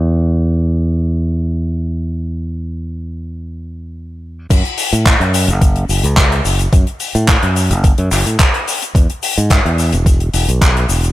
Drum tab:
CC |----------------|----------------|x---------------|----------------|
HH |----------------|----------------|xxoxxxoxxxoxxxox|xxoxxxoxxxoxxxox|
SH |----------------|----------------|x-xxx-xxx-xxx-xx|x-xxx-xxx-xxx-xx|
CP |----------------|----------------|----x-------x---|----x-----x-x---|
BD |----------------|----------------|o---o---o---o---|o---o---o---o---|

CC |----------------|
HH |xxoxxxoxxxoxxxox|
SH |x-xxx-xxx-xxx-xx|
CP |----x-------x---|
BD |o---o---o---o---|